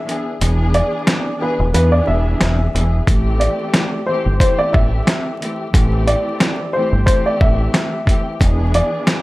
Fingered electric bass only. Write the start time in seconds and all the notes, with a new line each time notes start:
0.41 E1
1.59 E1
1.74 E2
2.08 E1
2.41 E1
2.74 E1
3.08 A1
4.26 G1
4.74 A1
5.74 A1
6.92 G1
7.41 A1
8.41 E1